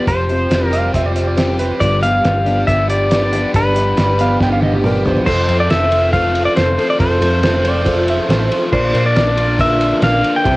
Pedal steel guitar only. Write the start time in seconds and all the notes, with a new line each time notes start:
Already playing: D5
0.08 C5
0.67 A#4
1.80 D5
2.03 F5
2.67 E5
2.90 D5
3.56 B4
5.26 C5
5.60 D5
5.71 E5
6.13 F5
6.45 D5
6.56 C5
6.90 D5
7.00 C5
8.73 C5
9.06 D5
9.61 E5
10.04 F5
10.36 G5